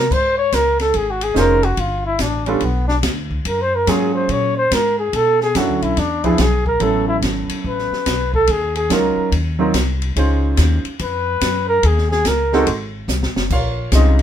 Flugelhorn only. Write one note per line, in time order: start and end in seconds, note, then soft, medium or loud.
0.00 0.13 A#4 medium
0.12 0.37 C5 medium
0.37 0.55 C#5 loud
0.54 0.79 A#4 medium
0.80 0.98 A4 medium
0.97 1.12 G#4 medium
1.11 1.25 F#4 medium
1.23 1.40 G#4 medium
1.38 1.65 A#4 loud
1.64 1.81 F#4 medium
1.80 2.05 F4 medium
2.06 2.23 E4 medium
2.21 2.49 D4 medium
2.47 2.66 C#4 medium
2.64 2.87 B3 medium
2.88 2.97 D4 medium
3.48 3.63 A#4 medium
3.61 3.77 C5 loud
3.75 3.90 A#4 medium
3.89 4.14 G#4 medium
4.15 4.33 C5 medium
4.31 4.56 C#5 loud
4.57 4.75 C5 loud
4.74 4.98 A#4 medium
4.99 5.17 G#4 medium
5.15 5.41 A4 loud
5.42 5.59 G#4 loud
5.57 5.84 F#4 medium
5.82 6.00 E4 medium
5.99 6.26 D4 medium
6.24 6.43 E4 medium
6.41 6.66 G#4 medium
6.67 6.84 A#4 medium
6.82 7.07 A4 medium
7.08 7.17 E4 medium
7.67 8.31 B4 medium
8.34 8.53 A4 loud
8.51 8.77 G#4 medium
8.77 8.94 G#4 medium
8.92 9.33 A#4 medium
11.02 11.66 B4 medium
11.68 11.87 A#4 loud
11.86 12.10 G#4 medium
12.11 12.29 G#4 loud
12.27 12.68 A#4 medium